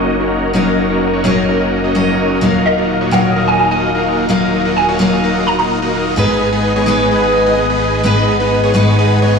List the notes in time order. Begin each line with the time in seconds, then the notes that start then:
Already playing: F#1 F#3 A#3 C#4 D#4 F#4 A#4 D#5 C#6
0.20 A#3 C#4 D#4 F#4 A#4
0.53 F#3 A#3 C#4 D#4 F#4 A#4
0.90 A#3 C#4 D#4 F#4 A#4
1.13 A#3 C#4 D#4 F#4 C#5
1.24 F#3 C#4 D#4 A#4
1.49 A#3 C#4 D#4 F#4 A#4
1.84 A#3 C#4 D#4 F#4 D#5
1.95 F#3 C#4 D#4 D#5
2.07 A#3 C#4 D#4 F#4 A#4
2.41 D#1 F#3 A#3 D#4 F4 F#4 A#4 F5 D#6
2.66 D#5
2.77 A#3 D#4 F4 F#4 A#4
3.01 A#3 D#4 F4 F#4 C#5
3.11 F#3 D#4 A#4 F5 F#5
3.36 A#3 D#4 F4 F#4 A#4
3.48 G#5
3.59 G#5
3.71 A#3 D#4 F4 F#4 D#5 G#5
3.95 A#3 D#4 F4 F#4 A#4
4.29 F#3 A#3 D#4 F4 F#4 A#4 F5
4.65 A#3 D#4 F4 F#4 A#4
4.77 G#5
4.88 A#3 D#4 F4 F#4 C#5
4.99 F#3 D#4 A#4 F5
5.24 A#3 D#4 F4 F#4 A#4
5.47 A#5
5.59 A#3 D#4 F4 F#4 D#5 A#5
5.82 A#3 D#4 F4 F#4 A#4
6.16 G#1 G#2 G#3 B3 D#4 G#4 B4 D#5 G#5
6.52 G#3 B3 D#4 G#4 B4
6.76 G#3 B3 D#4 G#4 C#5
6.86 G#2 G#3 B3 D#4 B4
7.11 G#3 B3 D#4 G#4 B4
7.46 G#3 B3 D#4 G#4 D#5
7.70 G#3 B3 D#4 G#4 B4
8.03 G#2 G#3 B3 D#4 G#4 B4 F#5
8.40 G#3 B3 D#4 G#4 B4
8.63 G#3 B3 D#4 G#4 C#5
8.74 G#2 G#3 B3 D#4 B4
8.99 G#3 B3 D#4 G#4 B4
9.22 G#3 B3 D#4 G#4 C#5